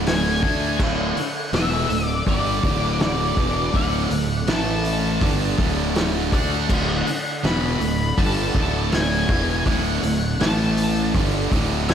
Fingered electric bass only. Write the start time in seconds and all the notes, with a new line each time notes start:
Already playing: D1
0.43 D2
0.79 D1
1.16 muted fingered electric bass stroke
1.53 E1
1.90 D1
2.27 G1
2.63 D1
3.37 E1
3.74 D1
4.11 D1
4.48 A1
5.21 G1
5.59 D1
6.32 D2
6.70 D1
7.07 muted fingered electric bass stroke
7.44 E1
7.80 D1
8.18 G1
8.55 D1
9.29 E1
9.66 D1
10.03 D1
10.41 A1
11.15 G1
11.51 D1